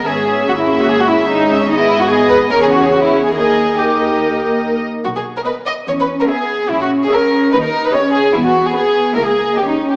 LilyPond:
<<
  \new Staff \with { instrumentName = "Violin section" } { \time 4/4 \key dis \phrygian \tempo 4 = 145 e''8 e''4 e''4 e''4 e''8 | dis''4 dis''4 cis''2 | dis''4 dis''2~ dis''8 r8 | r4 dis''4 r4 e''4 |
r4 e''4 r4 dis''4 | r4 b'4 e''4 dis''4 | }
  \new Staff \with { instrumentName = "Violin section" } { \time 4/4 \key dis \phrygian gis'4 fis'16 e'8 fis'16 gis'16 fis'16 e'8 dis'8. cis'16 | dis'16 e'8 fis'16 gis'8 b'8 ais'16 gis'16 fis'16 gis'16 fis'16 e'8 gis'16 | gis'4 g'2 r4 | fis'16 gis'8 ais'16 b'8 dis''8 cis''16 b'8 ais'16 gis'4 |
e'16 fis'8 gis'16 ais'4 b'16 ais'8 b'16 cis''8 gis'8 | e'16 fis'8 gis'16 gis'4 ais'16 gis'8. g'16 dis'8 g'16 | }
  \new Staff \with { instrumentName = "Cello section" } { \time 4/4 \key dis \phrygian b4 ais2 gis4 | b2 cis'4 cis'4 | dis'2.~ dis'8 r8 | r2 cis'4 b4 |
cis'4 cis'4 dis'4 cis'4 | b2 ais4 cis'4 | }
  \new Staff \with { instrumentName = "Viola section" } { \time 4/4 \key dis \phrygian << { gis'8 gis'4 gis'4 gis'4 gis'8 | gis'4 gis'4 gis'2 | ais'4 ais'2~ ais'8 r8 | r4 ais'4 r4 gis'4 |
r4 gis'4 r4 g'4 | r4 gis'4 e'4 g'4 | } \\ { cis'8 cis'4 cis'4 cis'4 cis'8 | b4 b4 cis'4 b4 | ais4 ais2~ ais8 r8 | r4 b4 r4 b4 |
r4 cis'4 r4 cis'4 | r4 b4 ais4 ais4 | } >> }
  \new Staff \with { instrumentName = "Double bass section" } { \clef bass \time 4/4 \key dis \phrygian gis,,4 gis,,4 gis,,4 gis,,4 | gis,,2 e,2 | dis,2.~ dis,8 r8 | b,,4 r4 e,4 r4 |
ais,,4 r4 dis,4 r4 | e,4 r4 cis,4 dis,4 | }
>>